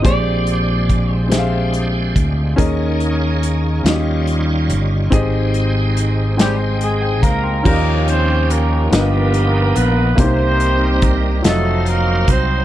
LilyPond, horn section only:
\new Staff \with { instrumentName = "Horn section" } { \time 6/8 \key ees \mixolydian \tempo 4. = 47 << { r2. | r2. | r4. <g g'>8 <aes aes'>8 <bes bes'>8 | <bes bes'>8 <c' c''>8 <bes bes'>8 <ais g'>4 <b b'>8 |
<c' c''>4 r8 <a a'>8 <bes bes'>8 <c' c''>8 | } \\ { r2. | r2. | r2. | <des' g'>4. <b ais'>4. |
<ees' g'>4. <c' ees'>4. | } >> }